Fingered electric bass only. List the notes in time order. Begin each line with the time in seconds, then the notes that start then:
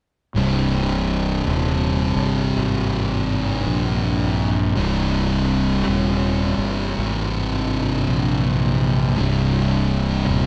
0.35 C1
1.46 D#1
2.16 G1
2.56 G#1
3.66 A#1
4.77 C1
5.87 D#1
6.57 G1
6.97 G#1
8.08 A#1
9.18 C1
10.28 D#1